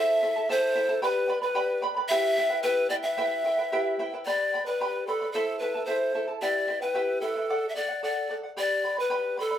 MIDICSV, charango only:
0, 0, Header, 1, 2, 480
1, 0, Start_track
1, 0, Tempo, 538117
1, 923, Time_signature, 2, 2, 24, 8
1, 8550, End_track
2, 0, Start_track
2, 0, Title_t, "Charango"
2, 0, Program_c, 0, 24
2, 0, Note_on_c, 0, 64, 72
2, 0, Note_on_c, 0, 69, 81
2, 0, Note_on_c, 0, 72, 80
2, 0, Note_on_c, 0, 76, 79
2, 0, Note_on_c, 0, 81, 86
2, 191, Note_off_c, 0, 64, 0
2, 192, Note_off_c, 0, 76, 0
2, 197, Note_off_c, 0, 72, 0
2, 199, Note_off_c, 0, 69, 0
2, 199, Note_off_c, 0, 81, 0
2, 201, Note_on_c, 0, 64, 57
2, 202, Note_on_c, 0, 76, 59
2, 209, Note_on_c, 0, 69, 60
2, 211, Note_on_c, 0, 81, 58
2, 310, Note_off_c, 0, 81, 0
2, 317, Note_off_c, 0, 69, 0
2, 321, Note_on_c, 0, 81, 51
2, 323, Note_off_c, 0, 64, 0
2, 323, Note_off_c, 0, 76, 0
2, 328, Note_on_c, 0, 69, 44
2, 334, Note_on_c, 0, 64, 43
2, 430, Note_off_c, 0, 64, 0
2, 436, Note_off_c, 0, 69, 0
2, 436, Note_off_c, 0, 81, 0
2, 438, Note_on_c, 0, 76, 74
2, 440, Note_on_c, 0, 72, 71
2, 441, Note_on_c, 0, 64, 69
2, 446, Note_on_c, 0, 69, 82
2, 447, Note_on_c, 0, 81, 88
2, 660, Note_off_c, 0, 64, 0
2, 661, Note_off_c, 0, 76, 0
2, 666, Note_off_c, 0, 69, 0
2, 671, Note_on_c, 0, 64, 69
2, 671, Note_on_c, 0, 76, 64
2, 672, Note_off_c, 0, 81, 0
2, 677, Note_on_c, 0, 69, 61
2, 682, Note_off_c, 0, 72, 0
2, 683, Note_on_c, 0, 81, 66
2, 784, Note_off_c, 0, 81, 0
2, 788, Note_off_c, 0, 69, 0
2, 793, Note_off_c, 0, 64, 0
2, 794, Note_on_c, 0, 81, 51
2, 797, Note_off_c, 0, 76, 0
2, 799, Note_on_c, 0, 69, 47
2, 804, Note_on_c, 0, 64, 39
2, 909, Note_off_c, 0, 64, 0
2, 910, Note_on_c, 0, 67, 74
2, 911, Note_on_c, 0, 79, 74
2, 912, Note_on_c, 0, 71, 77
2, 914, Note_off_c, 0, 69, 0
2, 916, Note_off_c, 0, 81, 0
2, 917, Note_on_c, 0, 74, 76
2, 920, Note_on_c, 0, 83, 80
2, 1132, Note_off_c, 0, 79, 0
2, 1138, Note_off_c, 0, 71, 0
2, 1141, Note_off_c, 0, 74, 0
2, 1142, Note_on_c, 0, 79, 55
2, 1146, Note_off_c, 0, 83, 0
2, 1148, Note_on_c, 0, 71, 53
2, 1152, Note_on_c, 0, 74, 64
2, 1156, Note_off_c, 0, 67, 0
2, 1157, Note_on_c, 0, 83, 67
2, 1254, Note_off_c, 0, 83, 0
2, 1262, Note_off_c, 0, 74, 0
2, 1265, Note_off_c, 0, 71, 0
2, 1265, Note_on_c, 0, 83, 53
2, 1273, Note_off_c, 0, 79, 0
2, 1273, Note_on_c, 0, 74, 49
2, 1275, Note_on_c, 0, 71, 42
2, 1372, Note_off_c, 0, 71, 0
2, 1379, Note_off_c, 0, 74, 0
2, 1381, Note_on_c, 0, 67, 77
2, 1382, Note_on_c, 0, 71, 76
2, 1383, Note_off_c, 0, 83, 0
2, 1383, Note_on_c, 0, 79, 80
2, 1390, Note_on_c, 0, 74, 73
2, 1394, Note_on_c, 0, 83, 83
2, 1611, Note_off_c, 0, 79, 0
2, 1615, Note_off_c, 0, 71, 0
2, 1621, Note_on_c, 0, 79, 59
2, 1622, Note_off_c, 0, 74, 0
2, 1626, Note_off_c, 0, 83, 0
2, 1626, Note_on_c, 0, 71, 68
2, 1632, Note_off_c, 0, 67, 0
2, 1633, Note_on_c, 0, 74, 63
2, 1637, Note_on_c, 0, 83, 75
2, 1742, Note_off_c, 0, 83, 0
2, 1748, Note_off_c, 0, 74, 0
2, 1752, Note_off_c, 0, 79, 0
2, 1753, Note_on_c, 0, 83, 53
2, 1754, Note_off_c, 0, 71, 0
2, 1759, Note_on_c, 0, 74, 52
2, 1765, Note_on_c, 0, 71, 46
2, 1873, Note_off_c, 0, 71, 0
2, 1877, Note_off_c, 0, 83, 0
2, 1878, Note_on_c, 0, 76, 78
2, 1879, Note_on_c, 0, 67, 84
2, 1880, Note_off_c, 0, 74, 0
2, 1882, Note_on_c, 0, 64, 74
2, 1883, Note_on_c, 0, 79, 86
2, 1884, Note_on_c, 0, 71, 88
2, 2101, Note_off_c, 0, 76, 0
2, 2109, Note_off_c, 0, 64, 0
2, 2111, Note_on_c, 0, 76, 59
2, 2114, Note_off_c, 0, 71, 0
2, 2114, Note_off_c, 0, 79, 0
2, 2120, Note_off_c, 0, 67, 0
2, 2120, Note_on_c, 0, 64, 59
2, 2124, Note_on_c, 0, 71, 63
2, 2125, Note_on_c, 0, 79, 65
2, 2213, Note_off_c, 0, 79, 0
2, 2218, Note_off_c, 0, 71, 0
2, 2224, Note_on_c, 0, 79, 55
2, 2228, Note_off_c, 0, 64, 0
2, 2229, Note_on_c, 0, 71, 49
2, 2236, Note_off_c, 0, 76, 0
2, 2238, Note_on_c, 0, 64, 46
2, 2344, Note_off_c, 0, 71, 0
2, 2346, Note_on_c, 0, 67, 73
2, 2348, Note_off_c, 0, 64, 0
2, 2349, Note_off_c, 0, 79, 0
2, 2349, Note_on_c, 0, 76, 81
2, 2355, Note_on_c, 0, 71, 88
2, 2358, Note_on_c, 0, 64, 77
2, 2359, Note_on_c, 0, 79, 82
2, 2567, Note_off_c, 0, 76, 0
2, 2574, Note_off_c, 0, 64, 0
2, 2578, Note_on_c, 0, 76, 60
2, 2579, Note_off_c, 0, 71, 0
2, 2582, Note_off_c, 0, 79, 0
2, 2584, Note_on_c, 0, 64, 65
2, 2590, Note_on_c, 0, 71, 66
2, 2593, Note_off_c, 0, 67, 0
2, 2593, Note_on_c, 0, 79, 67
2, 2699, Note_off_c, 0, 79, 0
2, 2707, Note_off_c, 0, 71, 0
2, 2709, Note_on_c, 0, 79, 49
2, 2710, Note_off_c, 0, 76, 0
2, 2713, Note_off_c, 0, 64, 0
2, 2717, Note_on_c, 0, 71, 45
2, 2723, Note_on_c, 0, 64, 38
2, 2828, Note_off_c, 0, 71, 0
2, 2829, Note_off_c, 0, 64, 0
2, 2829, Note_off_c, 0, 79, 0
2, 2832, Note_on_c, 0, 67, 80
2, 2832, Note_on_c, 0, 76, 82
2, 2838, Note_on_c, 0, 71, 85
2, 2839, Note_on_c, 0, 64, 80
2, 2840, Note_on_c, 0, 79, 77
2, 3056, Note_off_c, 0, 76, 0
2, 3064, Note_off_c, 0, 64, 0
2, 3067, Note_on_c, 0, 76, 58
2, 3071, Note_off_c, 0, 79, 0
2, 3073, Note_off_c, 0, 71, 0
2, 3075, Note_on_c, 0, 64, 59
2, 3077, Note_off_c, 0, 67, 0
2, 3082, Note_on_c, 0, 79, 63
2, 3084, Note_on_c, 0, 71, 57
2, 3184, Note_off_c, 0, 79, 0
2, 3189, Note_off_c, 0, 71, 0
2, 3194, Note_off_c, 0, 76, 0
2, 3194, Note_on_c, 0, 79, 51
2, 3198, Note_off_c, 0, 64, 0
2, 3200, Note_on_c, 0, 71, 46
2, 3208, Note_on_c, 0, 64, 37
2, 3315, Note_off_c, 0, 71, 0
2, 3317, Note_off_c, 0, 64, 0
2, 3318, Note_off_c, 0, 79, 0
2, 3321, Note_on_c, 0, 67, 79
2, 3324, Note_on_c, 0, 76, 77
2, 3326, Note_on_c, 0, 71, 90
2, 3327, Note_on_c, 0, 64, 77
2, 3331, Note_on_c, 0, 79, 89
2, 3550, Note_off_c, 0, 64, 0
2, 3550, Note_off_c, 0, 76, 0
2, 3554, Note_off_c, 0, 71, 0
2, 3560, Note_off_c, 0, 79, 0
2, 3560, Note_on_c, 0, 76, 64
2, 3561, Note_off_c, 0, 67, 0
2, 3561, Note_on_c, 0, 64, 72
2, 3565, Note_on_c, 0, 71, 75
2, 3571, Note_on_c, 0, 79, 80
2, 3679, Note_off_c, 0, 79, 0
2, 3681, Note_off_c, 0, 64, 0
2, 3681, Note_off_c, 0, 76, 0
2, 3683, Note_off_c, 0, 71, 0
2, 3690, Note_on_c, 0, 79, 54
2, 3697, Note_on_c, 0, 71, 54
2, 3700, Note_on_c, 0, 64, 44
2, 3797, Note_off_c, 0, 71, 0
2, 3797, Note_off_c, 0, 79, 0
2, 3804, Note_off_c, 0, 64, 0
2, 3804, Note_on_c, 0, 67, 68
2, 3807, Note_on_c, 0, 79, 67
2, 3808, Note_on_c, 0, 71, 68
2, 3811, Note_on_c, 0, 74, 74
2, 3811, Note_on_c, 0, 83, 76
2, 4035, Note_off_c, 0, 79, 0
2, 4041, Note_off_c, 0, 71, 0
2, 4043, Note_off_c, 0, 67, 0
2, 4046, Note_off_c, 0, 74, 0
2, 4046, Note_off_c, 0, 83, 0
2, 4046, Note_on_c, 0, 79, 49
2, 4052, Note_on_c, 0, 71, 53
2, 4057, Note_on_c, 0, 74, 58
2, 4060, Note_on_c, 0, 83, 63
2, 4155, Note_off_c, 0, 83, 0
2, 4164, Note_off_c, 0, 79, 0
2, 4165, Note_on_c, 0, 83, 44
2, 4167, Note_off_c, 0, 71, 0
2, 4167, Note_off_c, 0, 74, 0
2, 4177, Note_on_c, 0, 71, 36
2, 4178, Note_on_c, 0, 74, 48
2, 4284, Note_off_c, 0, 71, 0
2, 4284, Note_off_c, 0, 83, 0
2, 4286, Note_off_c, 0, 74, 0
2, 4287, Note_on_c, 0, 67, 69
2, 4293, Note_on_c, 0, 83, 71
2, 4294, Note_on_c, 0, 71, 69
2, 4294, Note_on_c, 0, 79, 70
2, 4296, Note_on_c, 0, 74, 75
2, 4517, Note_off_c, 0, 79, 0
2, 4524, Note_off_c, 0, 67, 0
2, 4524, Note_off_c, 0, 71, 0
2, 4526, Note_off_c, 0, 74, 0
2, 4528, Note_off_c, 0, 83, 0
2, 4528, Note_on_c, 0, 79, 52
2, 4535, Note_on_c, 0, 71, 63
2, 4537, Note_on_c, 0, 74, 59
2, 4537, Note_on_c, 0, 83, 67
2, 4638, Note_off_c, 0, 83, 0
2, 4645, Note_off_c, 0, 79, 0
2, 4646, Note_off_c, 0, 74, 0
2, 4647, Note_off_c, 0, 71, 0
2, 4649, Note_on_c, 0, 83, 50
2, 4657, Note_on_c, 0, 71, 43
2, 4657, Note_on_c, 0, 74, 41
2, 4765, Note_off_c, 0, 71, 0
2, 4766, Note_off_c, 0, 83, 0
2, 4769, Note_off_c, 0, 74, 0
2, 4769, Note_on_c, 0, 64, 75
2, 4769, Note_on_c, 0, 72, 69
2, 4770, Note_on_c, 0, 76, 69
2, 4774, Note_on_c, 0, 69, 80
2, 4777, Note_on_c, 0, 81, 82
2, 4992, Note_off_c, 0, 76, 0
2, 5001, Note_off_c, 0, 64, 0
2, 5001, Note_off_c, 0, 69, 0
2, 5003, Note_on_c, 0, 76, 53
2, 5006, Note_off_c, 0, 72, 0
2, 5007, Note_off_c, 0, 81, 0
2, 5011, Note_on_c, 0, 69, 54
2, 5012, Note_on_c, 0, 64, 56
2, 5018, Note_on_c, 0, 81, 61
2, 5114, Note_off_c, 0, 81, 0
2, 5123, Note_off_c, 0, 76, 0
2, 5125, Note_off_c, 0, 64, 0
2, 5125, Note_off_c, 0, 69, 0
2, 5125, Note_on_c, 0, 81, 45
2, 5135, Note_on_c, 0, 69, 43
2, 5136, Note_on_c, 0, 64, 39
2, 5231, Note_off_c, 0, 81, 0
2, 5233, Note_off_c, 0, 64, 0
2, 5235, Note_off_c, 0, 69, 0
2, 5237, Note_on_c, 0, 72, 72
2, 5241, Note_on_c, 0, 76, 69
2, 5242, Note_on_c, 0, 81, 73
2, 5244, Note_on_c, 0, 64, 69
2, 5246, Note_on_c, 0, 69, 74
2, 5466, Note_off_c, 0, 64, 0
2, 5470, Note_off_c, 0, 76, 0
2, 5475, Note_off_c, 0, 69, 0
2, 5477, Note_on_c, 0, 64, 56
2, 5479, Note_off_c, 0, 81, 0
2, 5480, Note_off_c, 0, 72, 0
2, 5481, Note_on_c, 0, 76, 61
2, 5486, Note_on_c, 0, 69, 68
2, 5490, Note_on_c, 0, 81, 64
2, 5588, Note_off_c, 0, 81, 0
2, 5594, Note_off_c, 0, 69, 0
2, 5598, Note_on_c, 0, 81, 50
2, 5600, Note_off_c, 0, 64, 0
2, 5602, Note_off_c, 0, 76, 0
2, 5605, Note_on_c, 0, 69, 44
2, 5610, Note_on_c, 0, 64, 39
2, 5716, Note_off_c, 0, 64, 0
2, 5720, Note_on_c, 0, 67, 73
2, 5721, Note_off_c, 0, 81, 0
2, 5721, Note_on_c, 0, 76, 70
2, 5723, Note_off_c, 0, 69, 0
2, 5727, Note_on_c, 0, 64, 77
2, 5727, Note_on_c, 0, 71, 72
2, 5732, Note_on_c, 0, 79, 79
2, 5942, Note_off_c, 0, 76, 0
2, 5950, Note_off_c, 0, 64, 0
2, 5950, Note_off_c, 0, 71, 0
2, 5953, Note_on_c, 0, 76, 54
2, 5960, Note_on_c, 0, 64, 54
2, 5961, Note_on_c, 0, 71, 59
2, 5962, Note_off_c, 0, 67, 0
2, 5962, Note_off_c, 0, 79, 0
2, 5973, Note_on_c, 0, 79, 58
2, 6072, Note_off_c, 0, 79, 0
2, 6074, Note_off_c, 0, 71, 0
2, 6079, Note_off_c, 0, 76, 0
2, 6082, Note_off_c, 0, 64, 0
2, 6082, Note_on_c, 0, 79, 52
2, 6085, Note_on_c, 0, 71, 43
2, 6096, Note_on_c, 0, 64, 38
2, 6192, Note_off_c, 0, 64, 0
2, 6192, Note_off_c, 0, 79, 0
2, 6195, Note_off_c, 0, 71, 0
2, 6196, Note_on_c, 0, 67, 72
2, 6196, Note_on_c, 0, 76, 66
2, 6202, Note_on_c, 0, 64, 76
2, 6203, Note_on_c, 0, 79, 77
2, 6206, Note_on_c, 0, 71, 77
2, 6426, Note_off_c, 0, 76, 0
2, 6429, Note_off_c, 0, 64, 0
2, 6435, Note_off_c, 0, 71, 0
2, 6436, Note_off_c, 0, 79, 0
2, 6437, Note_on_c, 0, 76, 56
2, 6440, Note_on_c, 0, 64, 59
2, 6441, Note_off_c, 0, 67, 0
2, 6445, Note_on_c, 0, 71, 64
2, 6447, Note_on_c, 0, 79, 65
2, 6553, Note_off_c, 0, 79, 0
2, 6557, Note_off_c, 0, 71, 0
2, 6561, Note_off_c, 0, 76, 0
2, 6563, Note_off_c, 0, 64, 0
2, 6564, Note_on_c, 0, 79, 46
2, 6568, Note_on_c, 0, 71, 41
2, 6574, Note_on_c, 0, 64, 37
2, 6685, Note_off_c, 0, 71, 0
2, 6685, Note_off_c, 0, 79, 0
2, 6688, Note_on_c, 0, 69, 76
2, 6690, Note_off_c, 0, 64, 0
2, 6692, Note_on_c, 0, 74, 78
2, 6693, Note_on_c, 0, 78, 78
2, 6910, Note_off_c, 0, 69, 0
2, 6920, Note_off_c, 0, 74, 0
2, 6920, Note_on_c, 0, 69, 48
2, 6926, Note_off_c, 0, 78, 0
2, 6931, Note_on_c, 0, 74, 58
2, 6937, Note_on_c, 0, 78, 59
2, 7021, Note_off_c, 0, 78, 0
2, 7032, Note_on_c, 0, 78, 47
2, 7034, Note_off_c, 0, 74, 0
2, 7041, Note_off_c, 0, 69, 0
2, 7044, Note_on_c, 0, 74, 43
2, 7155, Note_off_c, 0, 74, 0
2, 7159, Note_off_c, 0, 78, 0
2, 7159, Note_on_c, 0, 69, 62
2, 7166, Note_on_c, 0, 74, 65
2, 7169, Note_on_c, 0, 78, 73
2, 7388, Note_off_c, 0, 69, 0
2, 7396, Note_off_c, 0, 74, 0
2, 7399, Note_on_c, 0, 69, 53
2, 7400, Note_off_c, 0, 78, 0
2, 7407, Note_on_c, 0, 74, 60
2, 7411, Note_on_c, 0, 78, 58
2, 7512, Note_off_c, 0, 78, 0
2, 7519, Note_off_c, 0, 74, 0
2, 7523, Note_off_c, 0, 69, 0
2, 7523, Note_on_c, 0, 78, 44
2, 7533, Note_on_c, 0, 74, 40
2, 7637, Note_off_c, 0, 74, 0
2, 7640, Note_off_c, 0, 78, 0
2, 7641, Note_on_c, 0, 67, 64
2, 7643, Note_on_c, 0, 79, 68
2, 7644, Note_on_c, 0, 83, 69
2, 7648, Note_on_c, 0, 71, 66
2, 7649, Note_on_c, 0, 74, 67
2, 7875, Note_off_c, 0, 79, 0
2, 7877, Note_off_c, 0, 71, 0
2, 7881, Note_off_c, 0, 83, 0
2, 7884, Note_off_c, 0, 67, 0
2, 7885, Note_on_c, 0, 79, 51
2, 7886, Note_off_c, 0, 74, 0
2, 7887, Note_on_c, 0, 71, 51
2, 7892, Note_on_c, 0, 83, 62
2, 7897, Note_on_c, 0, 74, 57
2, 7988, Note_off_c, 0, 83, 0
2, 7997, Note_off_c, 0, 74, 0
2, 7999, Note_on_c, 0, 83, 46
2, 8000, Note_off_c, 0, 71, 0
2, 8006, Note_off_c, 0, 79, 0
2, 8008, Note_on_c, 0, 74, 45
2, 8011, Note_on_c, 0, 71, 37
2, 8110, Note_off_c, 0, 71, 0
2, 8116, Note_off_c, 0, 74, 0
2, 8116, Note_on_c, 0, 67, 70
2, 8117, Note_off_c, 0, 83, 0
2, 8117, Note_on_c, 0, 79, 66
2, 8121, Note_on_c, 0, 71, 77
2, 8126, Note_on_c, 0, 74, 72
2, 8127, Note_on_c, 0, 83, 71
2, 8349, Note_off_c, 0, 79, 0
2, 8352, Note_off_c, 0, 71, 0
2, 8360, Note_on_c, 0, 79, 53
2, 8361, Note_off_c, 0, 74, 0
2, 8362, Note_off_c, 0, 67, 0
2, 8362, Note_on_c, 0, 71, 59
2, 8365, Note_off_c, 0, 83, 0
2, 8372, Note_on_c, 0, 74, 59
2, 8376, Note_on_c, 0, 83, 68
2, 8468, Note_off_c, 0, 83, 0
2, 8472, Note_off_c, 0, 74, 0
2, 8478, Note_on_c, 0, 83, 45
2, 8480, Note_off_c, 0, 71, 0
2, 8483, Note_on_c, 0, 74, 43
2, 8484, Note_off_c, 0, 79, 0
2, 8490, Note_on_c, 0, 71, 42
2, 8550, Note_off_c, 0, 71, 0
2, 8550, Note_off_c, 0, 74, 0
2, 8550, Note_off_c, 0, 83, 0
2, 8550, End_track
0, 0, End_of_file